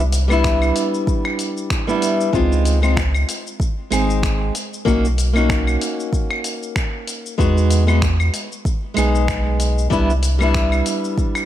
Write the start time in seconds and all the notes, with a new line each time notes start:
Already playing: C2
0.00 shaker
0.12 closed hi-hat, shaker
0.28 G3 B3 D4, claves, shaker
0.32 E4
0.44 finger snap, kick, shaker
0.62 claves, shaker
0.76 closed hi-hat, shaker
0.94 shaker
1.07 kick, shaker
1.25 finger snap, claves
1.39 closed hi-hat, shaker
1.57 shaker
1.70 finger snap, kick, shaker
1.87 G3 B3 D4 E4, shaker
2.02 closed hi-hat, shaker
2.21 shaker
2.33 C#2 G#3 C4 D#4 F4, kick, shaker
2.52 shaker
2.65 closed hi-hat, shaker
2.82 G#3 C4 D#4 F4, claves, shaker
2.97 finger snap, kick, shaker
3.15 claves, shaker
3.29 closed hi-hat, shaker
3.47 shaker
3.60 kick, shaker
3.90 G#1 G#3 C4 D#4 G#4, closed hi-hat, claves, shaker
4.10 shaker
4.23 finger snap, kick, shaker
4.55 closed hi-hat, shaker
4.74 shaker
4.85 B1 A#3 C#4 D#4 F#4, kick, shaker
5.05 shaker
5.18 closed hi-hat, shaker
5.33 A#3 C#4 D#4, claves, shaker
5.37 F#4
5.49 finger snap, kick, shaker
5.67 claves, shaker
5.81 closed hi-hat, shaker
6.00 shaker
6.13 kick, shaker
6.31 finger snap, claves
6.44 closed hi-hat, shaker
6.63 shaker
6.76 finger snap, kick, shaker
7.08 closed hi-hat, shaker
7.26 shaker
7.38 E2 G#3 B3 D#4 F#4, kick, shaker
7.58 shaker
7.71 closed hi-hat, shaker
7.87 G#3 B3 D#4 F#4, claves, shaker
8.02 finger snap, kick, shaker
8.20 claves, shaker
8.34 closed hi-hat, shaker
8.52 shaker
8.65 kick, shaker
8.94 B1 G#3 B3 D#4, closed hi-hat, claves, shaker
8.98 G#4
9.15 shaker
9.28 finger snap, kick, shaker
9.60 closed hi-hat, shaker
9.78 shaker
9.90 C2 G3 B3 D4 E4, kick, shaker
10.10 shaker
10.23 closed hi-hat, shaker
10.39 G3 B3 D4, claves, shaker
10.43 E4
10.54 finger snap, kick, shaker
10.72 claves, shaker
10.86 closed hi-hat, shaker
11.05 shaker
11.18 kick, shaker
11.35 finger snap, claves, shaker